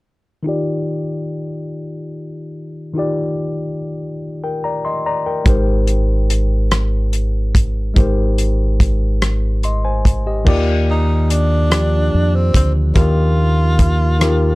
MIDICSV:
0, 0, Header, 1, 5, 480
1, 0, Start_track
1, 0, Key_signature, -3, "major"
1, 0, Tempo, 833333
1, 268, Time_signature, 6, 3, 24, 8
1, 8381, End_track
2, 0, Start_track
2, 0, Title_t, "Tine electric piano"
2, 0, Program_c, 0, 4
2, 245, Note_on_c, 0, 51, 56
2, 255, Note_on_c, 0, 63, 54
2, 264, Note_on_c, 0, 65, 51
2, 272, Note_on_c, 0, 67, 50
2, 280, Note_on_c, 0, 74, 63
2, 359, Control_c, 0, 64, 127
2, 1674, Note_off_c, 0, 51, 0
2, 1679, Note_off_c, 0, 63, 0
2, 1683, Note_off_c, 0, 65, 0
2, 1687, Note_off_c, 0, 67, 0
2, 1691, Note_off_c, 0, 74, 0
2, 1691, Note_on_c, 0, 51, 55
2, 1699, Note_on_c, 0, 63, 49
2, 1708, Note_on_c, 0, 65, 52
2, 1715, Note_on_c, 0, 67, 49
2, 1722, Note_on_c, 0, 74, 67
2, 2421, Note_off_c, 0, 74, 0
2, 2556, Note_on_c, 0, 70, 40
2, 2556, Note_on_c, 0, 79, 46
2, 2666, Note_off_c, 0, 70, 0
2, 2666, Note_off_c, 0, 79, 0
2, 2673, Note_on_c, 0, 82, 53
2, 2678, Note_on_c, 0, 74, 47
2, 2785, Note_off_c, 0, 82, 0
2, 2787, Note_off_c, 0, 74, 0
2, 2792, Note_on_c, 0, 84, 58
2, 2798, Note_on_c, 0, 75, 45
2, 2904, Note_off_c, 0, 84, 0
2, 2907, Note_off_c, 0, 75, 0
2, 2917, Note_on_c, 0, 82, 62
2, 2918, Note_on_c, 0, 74, 53
2, 3027, Note_off_c, 0, 74, 0
2, 3027, Note_off_c, 0, 82, 0
2, 3032, Note_on_c, 0, 70, 42
2, 3032, Note_on_c, 0, 79, 47
2, 3116, Note_off_c, 0, 51, 0
2, 3120, Note_off_c, 0, 63, 0
2, 3125, Note_off_c, 0, 65, 0
2, 3128, Note_off_c, 0, 67, 0
2, 3136, Note_on_c, 0, 56, 55
2, 3143, Note_on_c, 0, 63, 54
2, 3150, Note_on_c, 0, 67, 54
2, 3152, Note_off_c, 0, 70, 0
2, 3156, Control_c, 0, 64, 0
2, 3159, Note_on_c, 0, 70, 53
2, 3165, Note_on_c, 0, 72, 66
2, 3258, Note_off_c, 0, 79, 0
2, 3272, Control_c, 0, 64, 127
2, 4559, Note_off_c, 0, 56, 0
2, 4562, Note_off_c, 0, 63, 0
2, 4566, Note_off_c, 0, 67, 0
2, 4570, Note_off_c, 0, 70, 0
2, 4573, Note_off_c, 0, 72, 0
2, 4573, Note_on_c, 0, 56, 61
2, 4581, Note_on_c, 0, 63, 56
2, 4588, Note_on_c, 0, 67, 56
2, 4595, Note_on_c, 0, 70, 54
2, 4604, Note_on_c, 0, 72, 61
2, 5529, Note_off_c, 0, 67, 0
2, 5532, Note_off_c, 0, 70, 0
2, 5537, Note_off_c, 0, 72, 0
2, 5553, Note_on_c, 0, 84, 50
2, 5558, Note_on_c, 0, 75, 42
2, 5665, Note_off_c, 0, 84, 0
2, 5667, Note_off_c, 0, 75, 0
2, 5671, Note_on_c, 0, 72, 49
2, 5672, Note_on_c, 0, 80, 50
2, 5898, Note_off_c, 0, 72, 0
2, 5898, Note_off_c, 0, 80, 0
2, 5913, Note_on_c, 0, 67, 41
2, 5915, Note_on_c, 0, 75, 46
2, 5997, Note_off_c, 0, 56, 0
2, 6001, Note_off_c, 0, 63, 0
2, 6017, Note_on_c, 0, 51, 80
2, 6021, Note_on_c, 0, 58, 73
2, 6025, Note_off_c, 0, 67, 0
2, 6029, Note_on_c, 0, 65, 66
2, 6032, Note_on_c, 0, 67, 66
2, 6032, Note_on_c, 0, 74, 83
2, 6034, Control_c, 0, 64, 0
2, 6139, Control_c, 0, 64, 127
2, 6140, Note_off_c, 0, 75, 0
2, 6678, Note_off_c, 0, 51, 0
2, 6681, Note_off_c, 0, 58, 0
2, 6684, Note_off_c, 0, 65, 0
2, 6686, Note_off_c, 0, 67, 0
2, 6686, Note_off_c, 0, 74, 0
2, 6738, Note_on_c, 0, 53, 53
2, 6741, Note_on_c, 0, 62, 54
2, 6743, Note_on_c, 0, 65, 49
2, 6748, Note_on_c, 0, 67, 46
2, 6755, Note_on_c, 0, 74, 64
2, 7399, Note_off_c, 0, 53, 0
2, 7401, Note_off_c, 0, 62, 0
2, 7401, Note_off_c, 0, 65, 0
2, 7404, Note_off_c, 0, 67, 0
2, 7407, Note_off_c, 0, 74, 0
2, 7454, Note_on_c, 0, 63, 60
2, 7456, Note_on_c, 0, 51, 69
2, 7462, Note_on_c, 0, 65, 63
2, 7463, Note_on_c, 0, 67, 58
2, 7468, Note_on_c, 0, 70, 68
2, 8117, Note_off_c, 0, 63, 0
2, 8118, Note_off_c, 0, 51, 0
2, 8121, Note_off_c, 0, 65, 0
2, 8122, Note_off_c, 0, 67, 0
2, 8124, Note_off_c, 0, 70, 0
2, 8177, Note_on_c, 0, 51, 64
2, 8178, Note_on_c, 0, 63, 66
2, 8185, Note_on_c, 0, 65, 62
2, 8189, Note_on_c, 0, 67, 62
2, 8192, Note_on_c, 0, 70, 70
2, 8381, Note_off_c, 0, 51, 0
2, 8381, Note_off_c, 0, 63, 0
2, 8381, Note_off_c, 0, 65, 0
2, 8381, Note_off_c, 0, 67, 0
2, 8381, Note_off_c, 0, 70, 0
2, 8381, End_track
3, 0, Start_track
3, 0, Title_t, "Tenor saxophone"
3, 0, Program_c, 1, 66
3, 6282, Note_on_c, 1, 63, 76
3, 6518, Note_on_c, 1, 62, 75
3, 6527, Note_off_c, 1, 63, 0
3, 7114, Note_on_c, 1, 60, 70
3, 7123, Note_off_c, 1, 62, 0
3, 7231, Note_off_c, 1, 60, 0
3, 7236, Note_on_c, 1, 60, 71
3, 7328, Note_off_c, 1, 60, 0
3, 7463, Note_on_c, 1, 65, 81
3, 8381, Note_off_c, 1, 65, 0
3, 8381, End_track
4, 0, Start_track
4, 0, Title_t, "Fingered electric bass"
4, 0, Program_c, 2, 33
4, 3147, Note_on_c, 2, 32, 69
4, 4565, Note_off_c, 2, 32, 0
4, 4592, Note_on_c, 2, 32, 64
4, 6007, Note_off_c, 2, 32, 0
4, 6035, Note_on_c, 2, 39, 86
4, 6968, Note_off_c, 2, 39, 0
4, 6996, Note_on_c, 2, 41, 70
4, 7209, Note_off_c, 2, 41, 0
4, 7229, Note_on_c, 2, 38, 83
4, 7445, Note_off_c, 2, 38, 0
4, 7466, Note_on_c, 2, 39, 94
4, 8381, Note_off_c, 2, 39, 0
4, 8381, End_track
5, 0, Start_track
5, 0, Title_t, "Drums"
5, 3144, Note_on_c, 9, 36, 86
5, 3144, Note_on_c, 9, 42, 60
5, 3201, Note_off_c, 9, 36, 0
5, 3201, Note_off_c, 9, 42, 0
5, 3383, Note_on_c, 9, 42, 38
5, 3441, Note_off_c, 9, 42, 0
5, 3629, Note_on_c, 9, 42, 61
5, 3687, Note_off_c, 9, 42, 0
5, 3867, Note_on_c, 9, 42, 49
5, 3869, Note_on_c, 9, 37, 86
5, 3925, Note_off_c, 9, 42, 0
5, 3927, Note_off_c, 9, 37, 0
5, 4106, Note_on_c, 9, 42, 38
5, 4164, Note_off_c, 9, 42, 0
5, 4347, Note_on_c, 9, 36, 71
5, 4352, Note_on_c, 9, 42, 63
5, 4405, Note_off_c, 9, 36, 0
5, 4410, Note_off_c, 9, 42, 0
5, 4587, Note_on_c, 9, 36, 86
5, 4590, Note_on_c, 9, 42, 59
5, 4645, Note_off_c, 9, 36, 0
5, 4648, Note_off_c, 9, 42, 0
5, 4828, Note_on_c, 9, 42, 44
5, 4886, Note_off_c, 9, 42, 0
5, 5069, Note_on_c, 9, 36, 75
5, 5072, Note_on_c, 9, 42, 57
5, 5126, Note_off_c, 9, 36, 0
5, 5130, Note_off_c, 9, 42, 0
5, 5310, Note_on_c, 9, 42, 49
5, 5312, Note_on_c, 9, 37, 83
5, 5368, Note_off_c, 9, 42, 0
5, 5370, Note_off_c, 9, 37, 0
5, 5549, Note_on_c, 9, 42, 35
5, 5606, Note_off_c, 9, 42, 0
5, 5790, Note_on_c, 9, 36, 74
5, 5797, Note_on_c, 9, 42, 65
5, 5847, Note_off_c, 9, 36, 0
5, 5854, Note_off_c, 9, 42, 0
5, 6029, Note_on_c, 9, 36, 95
5, 6030, Note_on_c, 9, 49, 80
5, 6086, Note_off_c, 9, 36, 0
5, 6088, Note_off_c, 9, 49, 0
5, 6511, Note_on_c, 9, 42, 61
5, 6568, Note_off_c, 9, 42, 0
5, 6748, Note_on_c, 9, 42, 55
5, 6750, Note_on_c, 9, 37, 91
5, 6805, Note_off_c, 9, 42, 0
5, 6807, Note_off_c, 9, 37, 0
5, 7225, Note_on_c, 9, 36, 82
5, 7229, Note_on_c, 9, 42, 68
5, 7283, Note_off_c, 9, 36, 0
5, 7287, Note_off_c, 9, 42, 0
5, 7463, Note_on_c, 9, 42, 71
5, 7464, Note_on_c, 9, 36, 99
5, 7520, Note_off_c, 9, 42, 0
5, 7521, Note_off_c, 9, 36, 0
5, 7943, Note_on_c, 9, 42, 68
5, 7944, Note_on_c, 9, 36, 71
5, 8001, Note_off_c, 9, 36, 0
5, 8001, Note_off_c, 9, 42, 0
5, 8185, Note_on_c, 9, 42, 51
5, 8187, Note_on_c, 9, 37, 86
5, 8242, Note_off_c, 9, 42, 0
5, 8245, Note_off_c, 9, 37, 0
5, 8381, End_track
0, 0, End_of_file